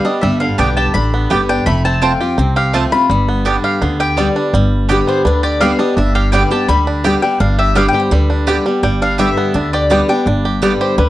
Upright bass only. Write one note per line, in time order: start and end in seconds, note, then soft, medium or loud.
0.23 0.46 G1 medium
0.59 0.89 B1 medium
0.94 1.25 A1 medium
1.31 1.61 G1 medium
1.67 2.13 F1 medium
2.38 2.84 C2 medium
3.10 3.56 G1 medium
3.82 4.28 D2 medium
4.53 4.99 G1 medium
5.25 5.71 D2 medium
5.97 6.43 G1 medium
6.68 7.14 D2 medium
7.40 7.86 G1 loud
8.11 8.57 D2 medium
8.83 9.29 G1 medium
9.54 10.00 D2 medium
10.26 10.72 G1 medium
10.98 11.09 D2 medium